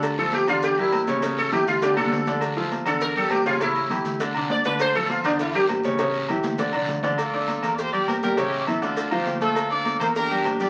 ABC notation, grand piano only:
X:1
M:4/4
L:1/8
Q:1/4=202
K:Dm
V:1 name="Grand piano"
[D,Dd] [F,FA]2 [D,Dd]2 [G,GB]2 [^C,^C^c] | [^C,^C^c]2 [E,EG]2 [D,Dd] [D,Dd]2 [D,Dd]- | [D,Dd] [F,FA]2 [D,Dd]2 [G,GB]2 [^C,^C^c] | [^C,^C^c]2 [E,EG]2 [D,Dd] [D,Dd]2 [D,Dd]- |
[D,Dd] [F,FA]2 [D,Dd]2 [G,GB]2 [^C,^C^c] | [^C,^C^c]2 [E,EG]2 [D,Dd] [D,Dd]2 [D,Dd] | z [Ddd']2 [B,Bb]2 [G,Gg]2 [G,Gg] | [^C,^C^c]2 [E,Ee] [D,Dd]2 [F,Ff]2 [A,Aa]- |
[A,Aa] [Ddd']2 [B,Bb]2 [G,Gg]2 [G,Gg] |]